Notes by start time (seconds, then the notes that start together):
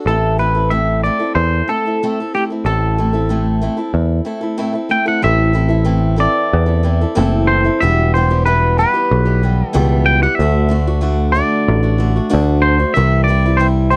0.06 A1 A2 A3 C4 E4 A4
0.38 A3 C4 E4 A4 B4
0.55 C4 E4 A4
0.70 A2 A3 C4 E4 A4 E5
1.04 A3 C4 E4 A4 D5
1.19 C4 E4 A4
1.35 E2 C5
1.68 A3 C4 E4 A4
1.86 C4 E4 A4
2.03 A2 A3 C4 E4 A4
2.20 C4 E4 A4
2.34 A3 C4 E4 G4 A4
2.50 C4 E4 A4
2.65 A1 A2 A3 C4 E4 A4
2.98 A3 C4 E4 A4
3.13 C4 E4 A4
3.29 A2 A3 C4 E4 A4
3.61 A3 C4 E4 A4
3.77 C4 E4 A4
3.94 E2
4.25 A3 C4 E4 A4
4.41 C4 E4 A4
4.58 A2 A3 C4 E4 A4
4.73 C4 E4 A4
4.89 A3 C4 E4 A4 G5
5.06 C4 E4 A4 F#5
5.22 A1 A2 E3 C4 E4 A4 E5
5.53 E3 C4 E4 A4
5.68 C4 E4 A4
5.84 A2 E3 C4 E4 A4
6.16 E3 C4 E4 A4 D5
6.53 E2
6.66 C4 E4 A4
6.83 E3 C4 E4 A4
7.01 C4 E4 A4
7.15 F#1 A2 E3 C4 E4 A4
7.47 C5
7.65 C4 E4 A4
7.80 E1 E2 B2 E3 G3 B3 G4 E5
8.14 E3 G3 B3 G4 C5
8.30 E3 G3 B3 G4
8.46 E2 B2 E3 G3 B3 G4 B4
8.78 E3 G3 B3 G4 B4
8.94 E3 G3 B3 G4
9.11 B1
9.25 E3 G3 B3 G4
9.43 E3 G3 B3 G4
9.69 A4
9.73 C#2 E2 B2 E3 G3 B3 G4
10.06 G5
10.23 E3 G3 B3 G4 F#5
10.35 E5
10.39 D2 D3 A3 D4 F#4
10.69 D3 A3 D4 F#4
10.87 A3 D4 F#4
11.01 D3 A3 D4 F#4
11.32 D3 A3 D4 D5
11.37 F#4
11.68 A1
11.83 A3 D4 F#4
11.98 D3 A3 D4 F#4
12.16 A3 D4 F#4
12.30 D2 D3 A3 D4 F#4
12.62 C5
12.79 A3 D4 F#4
12.94 C2 C3 E3 G3 C4 E4 E5
13.24 E3 D5
13.29 G3 C4 E4
13.46 G3 C4 E4
13.57 C3 E3 G3 C4 E4 C5
13.90 E3 G3 C4 E4 C5